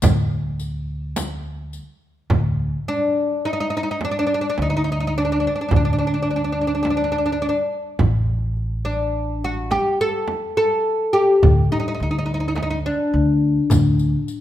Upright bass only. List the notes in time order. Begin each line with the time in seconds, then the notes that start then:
0.02 D2
2.30 D2
4.58 D2
5.72 D2
8.00 A1
11.43 D2
12.00 D2
13.14 D2
13.70 D2